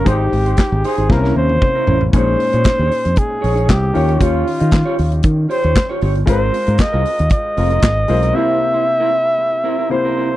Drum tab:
HH |x-oxx-ox--------|x-oxx-oxx-oxx-ox|x-oxx-oxx-oxx-ox|x-oxx-oxx-oxx-ox|
CP |----x-----------|----x-------x---|----x-------x---|----x-------x---|
SD |----o---oo------|----o-------o---|----o-------o---|----o-------o---|
T1 |-----------o----|----------------|----------------|----------------|
T2 |------------o---|----------------|----------------|----------------|
FT |--------------oo|----------------|----------------|----------------|
BD |o---o---o---o---|o---o---o---o---|o---o---o---o---|o---o---o---o---|

HH |----------------|
CP |----------------|
SD |----------------|
T1 |----------------|
T2 |----------------|
FT |----------------|
BD |----------------|